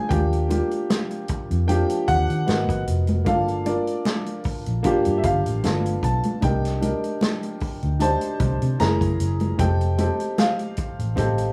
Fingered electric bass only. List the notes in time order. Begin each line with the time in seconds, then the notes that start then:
0.11 D#2
1.30 muted fingered electric bass stroke
1.51 F2
2.08 D#2
2.29 D#3
2.48 G#1
2.69 G#1
2.88 F1
3.26 G1
4.45 muted fingered electric bass stroke
4.67 A#1
5.07 G2
5.24 G1
5.46 A1
5.64 G1
6.03 B1
6.43 C2
7.62 muted fingered electric bass stroke
7.83 D2
8.40 C2
8.62 C3
8.80 F#1
9.01 F#1
9.20 F#1
9.59 F1
10.78 muted fingered electric bass stroke
10.99 A1
11.18 A1